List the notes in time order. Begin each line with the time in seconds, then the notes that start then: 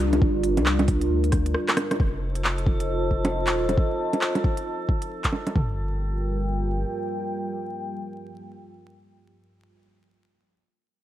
Already playing: C2 G3 D4 F4 A#4
0.13 closed hi-hat, low bongo
0.22 G1, kick
0.43 open hi-hat
0.57 C2, closed hi-hat, low bongo
0.66 clap
0.79 closed hi-hat, low bongo
0.88 kick, open hi-hat
1.01 closed hi-hat
1.10 D2
1.24 open hi-hat
1.32 kick, cross-stick, open hi-hat
1.46 closed hi-hat
1.54 cross-stick
1.68 cross-stick, clap, closed hi-hat
1.77 cross-stick, open hi-hat, low bongo
1.91 cross-stick, closed hi-hat, low bongo
2.00 F1 F4 A4 C5 D#5 A5, kick
2.35 closed hi-hat
2.44 clap
2.58 closed hi-hat
2.66 kick
2.80 closed hi-hat
3.11 kick
3.25 closed hi-hat, low bongo
3.46 D#1, clap, closed hi-hat
3.69 closed hi-hat, low bongo
3.77 kick
4.13 closed hi-hat, low bongo
4.21 clap
4.35 closed hi-hat, low bongo
4.44 kick
4.57 closed hi-hat
4.89 kick
5.02 closed hi-hat
5.24 kick, clap, closed hi-hat
5.33 low bongo
5.47 closed hi-hat, low bongo
5.55 G1 G3 F4 A#4 G5, kick, floor tom